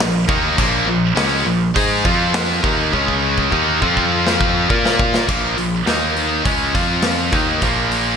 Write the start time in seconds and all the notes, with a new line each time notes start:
Already playing: A#1
0.00 A#2 F3, snare, open hi-hat
0.28 D#2 D#3 A#3 D#4, kick
0.57 A#1 A#2 F3 A#3, kick, crash
0.85 A#1 A#2 F3
1.16 C#2 C#3 G#3 C#4, snare, open hi-hat
1.45 A#1 A#2 F3
1.76 G#2 G#3 D#4 G#4, kick, open hi-hat
2.04 F2 F3 C4 F4, kick
2.34 snare, open hi-hat
2.64 D#2 D#3 A#3 D#4, kick
2.93 C#2 C#3 G#3 C#4, kick
3.08 kick
3.38 kick
3.51 D#2 D#3 A#3 D#4, kick
3.81 F2 F3 C4 F4, kick
3.97 kick
4.27 snare
4.41 kick
4.69 A#2 A#3 F4 A#4, kick
4.86 snare
4.99 kick
5.14 snare
5.27 A#1 A#2 F3 A#3, kick, crash
5.57 A#1 A#2 F3, open hi-hat
5.86 D#2 D#3 A#3 D#4, snare, open hi-hat
6.17 open hi-hat
6.44 C#2 C#3 G#3 C#4, kick, open hi-hat
6.74 F2 F3 C4 F4, kick, open hi-hat
7.02 snare, open hi-hat
7.32 D#2 D#3 A#3 D#4, kick, open hi-hat
7.61 A#1 A#2 F3 A#3, kick, open hi-hat
7.92 open hi-hat